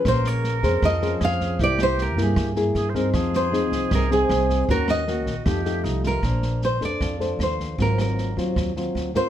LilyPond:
<<
  \new Staff \with { instrumentName = "Nylon-string guitar" } { \time 4/4 \key f \phrygian \tempo 4 = 155 c''8 des''4. ees''4 f''4 | d''8 c''8 bes'8 aes'2 r8 | r8 c''4. bes'8 aes'4. | bes'8 ees''2. bes'8~ |
\key bes \major bes'4 c''8 d''4. c''4 | bes'8 bes'4 r2 c''8 | }
  \new Staff \with { instrumentName = "Flute" } { \time 4/4 \key f \phrygian bes'2. aes'4 | g'2~ g'16 r8. aes'16. c''32 bes'8 | aes'1 | ges'4 ges'4 g'4 ees'8 f'8 |
\key bes \major r1 | r1 | }
  \new Staff \with { instrumentName = "Nylon-string guitar" } { \time 4/4 \key f \phrygian << { <cis' gis'>4. <des' aes' c''>4 <des' aes' c''>4. | <bes e'>4. <bes e'>4 <bes e' aes'>4 <c' ees' aes'>8~ | <c' ees' aes'>4 <c' ees' aes'>4. <c' ees' aes'>4. | <bes des' ges'>4 <bes des' ges'>8 r8 <a ees' g'>8 <a ees' g'>4. |
\key bes \major <d' c''>4. <d' a' c''>4 <d' a' c''>4. | <ges c' f'>4. <ges c' f'>4 <ges c' f'>4 <c' f' bes'>8 | } \\ { bes2 f2 | c2 r2 | f2 c2 | ees2 f2 |
bes2 f2 | aes,2 r2 | } >> }
  \new Staff \with { instrumentName = "Upright bass" } { \clef bass \time 4/4 \key f \phrygian bes,,4. f,8 f,4 f,4 | c,4. g,8 g,4 g,4 | f,4. c,8 c,4 c,4 | ees,4. bes,,8 f,4 c,4 |
\key bes \major bes,,4. f,8 f,4 ees,4 | aes,,4. ees,8 ees,4 d,4 | }
  \new DrumStaff \with { instrumentName = "Drums" } \drummode { \time 4/4 <bd ss sn>8 sn8 sn8 <bd sn>8 <bd ss sn>8 sn8 <ss sn>8 <bd sn>8 | <bd sn>8 <ss sn>8 sn8 <bd sn>8 <bd ss sn>8 sn8 sn8 <bd sn>8 | <bd ss sn>8 sn8 sn8 <bd sn>8 <bd ss sn>8 sn8 <ss sn>8 <bd sn>8 | <bd sn>8 <ss sn>8 sn8 <bd sn>8 <bd ss sn>8 sn8 sn8 <bd sn>8 |
<bd ss sn>8 sn8 sn8 <bd sn>8 <bd ss sn>8 sn8 <ss sn>8 <bd sn>8 | <bd sn>8 <ss sn>8 sn8 <bd sn>8 <bd ss sn>8 sn8 sn8 <bd sn>8 | }
>>